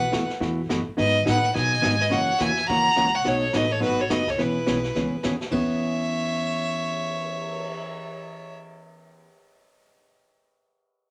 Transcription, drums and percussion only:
0.13 snare, hi-hat pedal
0.30 snare
0.42 brush sweep, snare
0.70 snare, hi-hat pedal
0.98 brush sweep, snare
1.27 snare, hi-hat pedal
1.44 snare
1.55 brush sweep, snare
1.83 snare, hi-hat pedal
2.00 snare
2.11 brush sweep, snare
2.39 snare, hi-hat pedal
2.56 snare
2.68 brush sweep, snare
2.96 snare, hi-hat pedal
3.25 brush sweep, snare
3.53 snare, hi-hat pedal
3.82 brush sweep, snare
4.10 snare, hi-hat pedal
4.27 kick, snare
4.38 brush sweep, snare
4.67 snare, hi-hat pedal
4.84 snare
4.95 brush sweep, snare
5.23 snare, hi-hat pedal
5.41 snare
5.51 kick, crash
5.69 cymbal swell

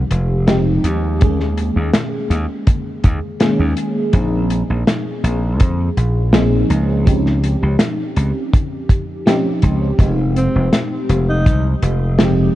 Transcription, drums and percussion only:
0.11 closed hi-hat
0.48 snare, closed hi-hat
0.84 closed hi-hat
1.21 kick, closed hi-hat
1.40 snare
1.58 closed hi-hat
1.93 snare, closed hi-hat
2.31 closed hi-hat
2.67 kick, closed hi-hat
3.04 kick, closed hi-hat
3.40 snare, closed hi-hat
3.77 closed hi-hat
4.13 kick, closed hi-hat
4.50 closed hi-hat
4.87 snare, closed hi-hat
5.24 closed hi-hat
5.60 kick, closed hi-hat
5.97 closed hi-hat
6.33 snare, closed hi-hat
6.70 closed hi-hat
7.07 kick, closed hi-hat
7.26 snare
7.44 closed hi-hat
7.79 snare, closed hi-hat
8.16 closed hi-hat
8.53 kick, closed hi-hat
8.89 kick, closed hi-hat
9.27 snare, closed hi-hat
9.62 kick, closed hi-hat
9.99 kick, closed hi-hat
10.36 closed hi-hat
10.73 snare, closed hi-hat
11.09 closed hi-hat
11.46 kick, closed hi-hat
11.82 closed hi-hat
12.19 snare, closed hi-hat

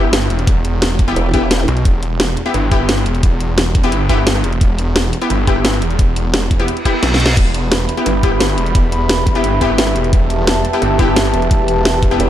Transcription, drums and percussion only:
0.04 cross-stick
0.13 snare, closed hi-hat
0.30 closed hi-hat
0.39 closed hi-hat
0.47 kick, closed hi-hat
0.65 closed hi-hat
0.82 snare, closed hi-hat
0.91 cross-stick
0.99 kick, closed hi-hat
1.08 closed hi-hat
1.16 closed hi-hat
1.34 kick, closed hi-hat
1.42 cross-stick
1.51 snare, closed hi-hat
1.59 cross-stick
1.68 closed hi-hat
1.77 closed hi-hat
1.85 kick, closed hi-hat
2.03 closed hi-hat
2.20 snare, closed hi-hat
2.28 cross-stick
2.37 closed hi-hat
2.46 closed hi-hat
2.54 cross-stick, closed hi-hat
2.71 kick, closed hi-hat
2.80 cross-stick
2.89 snare, closed hi-hat
3.06 closed hi-hat
3.15 closed hi-hat
3.23 kick, closed hi-hat
3.40 closed hi-hat
3.58 snare, closed hi-hat
3.66 cross-stick
3.75 kick, closed hi-hat
3.84 closed hi-hat
3.92 closed hi-hat
4.09 kick, closed hi-hat
4.18 cross-stick
4.27 snare, closed hi-hat
4.35 cross-stick
4.44 closed hi-hat
4.53 closed hi-hat
4.61 kick, closed hi-hat
4.78 closed hi-hat
4.96 snare, closed hi-hat
5.04 cross-stick
5.13 closed hi-hat
5.22 closed hi-hat
5.30 cross-stick, closed hi-hat
5.47 kick, closed hi-hat
5.56 cross-stick
5.65 snare, closed hi-hat
5.82 closed hi-hat
5.90 closed hi-hat
5.99 kick, closed hi-hat
6.16 closed hi-hat
6.34 snare, closed hi-hat
6.42 cross-stick
6.51 kick, closed hi-hat
6.60 closed hi-hat
6.68 closed hi-hat
6.77 closed hi-hat
6.85 kick, closed hi-hat
6.94 cross-stick
7.03 snare, closed hi-hat
7.14 snare
7.20 closed hi-hat
7.26 snare, closed hi-hat
7.37 kick, closed hi-hat, crash
7.54 closed hi-hat
7.72 snare, closed hi-hat
7.80 cross-stick
7.89 closed hi-hat
7.97 closed hi-hat
8.06 cross-stick, closed hi-hat
8.23 kick, closed hi-hat
8.32 cross-stick
8.40 snare, closed hi-hat
8.58 closed hi-hat
8.66 closed hi-hat
8.75 kick, closed hi-hat
8.92 closed hi-hat
9.09 snare, closed hi-hat
9.18 cross-stick
9.27 kick, closed hi-hat
9.35 closed hi-hat
9.44 closed hi-hat
9.61 kick, closed hi-hat
9.70 cross-stick
9.78 snare, closed hi-hat
9.87 cross-stick
9.96 closed hi-hat
10.04 closed hi-hat
10.13 kick, closed hi-hat
10.30 closed hi-hat
10.47 snare, closed hi-hat
10.56 cross-stick
10.65 closed hi-hat
10.73 closed hi-hat
10.82 cross-stick, closed hi-hat
10.99 kick, closed hi-hat
11.08 cross-stick
11.16 snare, closed hi-hat
11.34 closed hi-hat
11.42 closed hi-hat
11.51 kick, closed hi-hat
11.68 closed hi-hat
11.85 snare, closed hi-hat
11.94 cross-stick
12.03 kick, closed hi-hat
12.11 closed hi-hat
12.20 closed hi-hat

